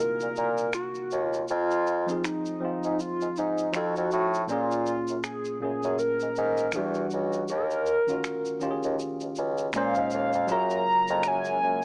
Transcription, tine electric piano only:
0.00 1.50 C3 medium
0.00 1.51 A#3 medium
0.00 1.51 D#4 medium
0.00 1.50 E4 medium
0.00 0.94 F4 medium
0.00 1.50 F#4 medium
2.06 2.53 F3 medium
2.06 2.54 C4 medium
2.06 2.54 D#4 medium
2.11 2.55 G#4 medium
2.60 3.71 F3 medium
2.60 3.74 C4 medium
2.60 3.72 D#4 medium
2.65 3.75 F4 medium
3.72 4.38 F3 medium
3.72 4.38 D#4 medium
3.72 4.39 F#4 medium
3.77 4.40 A4 medium
4.47 5.45 A#2 medium
4.47 5.46 A#3 medium
4.47 5.47 C#4 medium
4.52 5.47 G#4 medium
5.60 6.73 A#2 medium
5.60 6.74 A#3 medium
5.60 6.75 C#4 medium
5.65 6.75 G#4 medium
6.73 7.38 E3 medium
6.73 7.39 D4 medium
6.73 7.39 F#4 medium
6.77 7.40 G3 medium
8.07 8.53 D#3 medium
8.07 8.54 C#4 medium
8.07 8.54 F4 medium
8.11 8.55 F#4 medium
8.60 9.73 D#3 medium
8.60 9.74 C#4 medium
8.60 9.75 F4 medium
8.64 8.70 G4 medium
8.71 9.79 G#4 medium
9.73 10.38 A#2 medium
9.73 10.39 G#3 medium
9.73 10.40 C#4 medium
9.78 10.40 C5 loud
10.47 11.76 F#3 medium
10.47 11.77 F4 medium
10.47 11.77 G#4 medium
10.52 11.78 A#4 medium

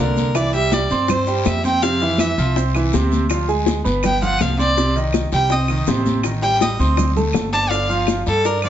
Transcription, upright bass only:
0.00 0.85 C2 medium
0.91 1.42 G2 medium
1.46 2.32 F2 medium
2.38 2.89 C2 medium
2.94 3.79 D2 medium
3.86 4.37 G1 medium
4.41 5.27 C2 medium
5.32 5.83 C2 medium
5.87 6.74 A1 medium
6.79 7.31 D2 medium
7.35 8.21 G1 medium
8.27 8.69 G2 medium

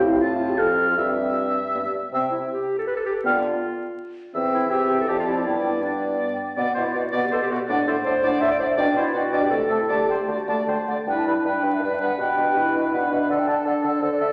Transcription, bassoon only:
0.00 0.61 A2 medium
0.59 0.96 F2 soft
0.97 1.57 G2 soft
1.74 1.83 G2 soft
2.12 2.44 C3 soft
3.25 3.55 D3 soft
4.35 5.04 E2 medium
5.08 5.46 F2 soft
5.45 6.39 G2 soft
6.57 6.66 B2 soft
6.76 6.85 B2 soft
6.95 7.03 B2 soft
7.13 7.22 B2 soft
7.32 7.40 B2 soft
7.51 7.59 B2 soft
7.69 7.77 A2 medium
7.88 7.96 A2 soft
8.05 8.13 A2 soft
8.23 8.32 A2 medium
8.42 8.50 A2 soft
8.60 8.68 A2 soft
8.77 8.86 B2 medium
8.95 9.04 B2 soft
9.13 9.22 B2 soft
9.32 9.40 B2 medium
9.51 9.59 C3 soft
9.70 9.79 C3 soft
9.89 9.98 D3 soft
10.08 10.18 D3 soft
10.28 10.37 D3 soft
10.47 10.56 D3 soft
10.68 10.77 D3 soft
10.88 10.97 D3 soft
11.06 11.15 G2 soft
11.26 11.35 G2 soft
11.45 11.53 G2 soft
11.63 11.72 G2 soft
11.82 11.90 G2 soft
12.00 12.08 G2 soft
12.18 12.27 B2 soft
12.37 12.46 B2 soft
12.55 12.64 B2 soft
12.74 12.83 B2 soft
12.93 13.01 B2 soft
13.11 13.19 B2 soft
13.30 13.38 D3 soft
13.47 13.55 D3 soft
13.65 13.74 D3 soft
13.84 13.92 D3 soft
14.02 14.11 D3 soft
14.20 14.29 D3 soft

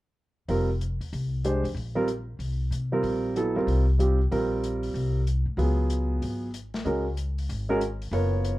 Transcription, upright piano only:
0.48 0.67 G3 soft
0.48 0.67 C4 soft
0.48 0.68 F4 soft
0.48 0.68 A#4 medium
1.45 1.63 G#3 soft
1.45 1.63 D4 soft
1.45 1.63 G4 soft
1.45 1.64 C5 soft
1.96 2.07 G3 medium
1.96 2.07 C4 medium
1.96 2.07 F4 medium
1.96 2.07 A#4 medium
2.92 3.33 G3 medium
2.92 3.33 C4 soft
2.92 3.34 F4 medium
2.92 3.34 A#4 medium
3.36 3.54 F#3 medium
3.36 3.54 B3 soft
3.36 3.55 E4 medium
3.36 3.55 A4 medium
3.55 3.84 G3 medium
3.55 3.84 C4 soft
3.55 3.84 F4 medium
3.55 3.84 A#4 medium
3.99 4.17 G3 soft
3.99 4.18 C4 soft
3.99 4.18 F4 soft
3.99 4.18 G4 soft
4.31 5.20 G3 medium
4.31 5.20 C4 soft
4.31 5.20 F4 soft
4.31 5.20 A#4 medium
5.57 6.47 F#3 medium
5.57 6.47 B3 medium
5.57 6.47 F4 soft
5.57 6.47 G#4 medium
6.85 7.04 G#3 soft
6.85 7.04 C#4 soft
6.85 7.04 F#4 soft
6.85 7.04 A#4 medium
7.69 7.80 G#3 medium
7.69 7.80 C#4 medium
7.69 7.80 F#4 medium
7.69 7.80 A#4 medium
8.12 8.59 B3 soft
8.12 8.59 F4 soft
8.12 8.59 A#4 soft
8.12 8.59 C#5 medium

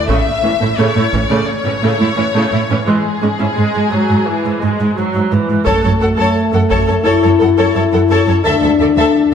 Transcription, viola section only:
0.08 0.25 C#3 medium
0.08 0.24 A3 soft
0.44 0.50 E3 soft
0.44 0.50 C#4 soft
0.61 0.69 A3 soft
0.61 0.68 E4 soft
0.79 0.95 C#3 soft
0.79 0.95 A3 soft
0.96 1.03 A3 soft
0.96 1.03 E4 soft
1.13 1.20 E3 soft
1.13 1.20 C#4 soft
1.31 1.47 C#3 medium
1.31 1.47 A3 soft
1.65 1.72 E3 soft
1.65 1.73 C#4 soft
1.83 1.99 C#3 soft
1.83 1.98 A3 soft
1.99 2.06 A3 soft
1.99 2.07 E4 soft
2.17 2.24 E3 soft
2.17 2.24 C#4 soft
2.35 2.51 C#3 soft
2.35 2.51 A3 soft
2.53 2.60 A3 soft
2.53 2.60 E4 soft
2.70 2.78 E3 soft
2.70 2.77 C#4 soft
2.87 3.04 E3 soft
2.87 3.04 G#3 soft
3.22 3.29 G#3 soft
3.22 3.30 C#4 soft
3.39 3.46 C#4 soft
3.39 3.47 E4 soft
3.57 3.89 G#3 soft
3.92 4.27 F#3 soft
4.27 4.62 E3 soft
4.61 4.96 G#3 soft
4.96 5.31 F#3 soft
5.32 5.67 E3 soft
5.66 5.82 A4 soft
5.83 5.90 A4 soft
6.01 6.08 A4 soft
6.18 6.35 A4 soft
6.53 6.60 A4 soft
6.70 6.86 A4 soft
6.88 6.95 A4 soft
7.05 7.21 A4 soft
7.23 7.30 A4 soft
7.39 7.47 A4 soft
7.57 7.74 A4 soft
7.76 7.83 A4 soft
7.94 8.01 A4 soft
8.11 8.27 A4 soft
8.28 8.35 A4 soft
8.46 8.62 A4 soft
8.64 8.71 A4 soft
8.81 8.88 A4 soft
8.99 9.15 A4 soft

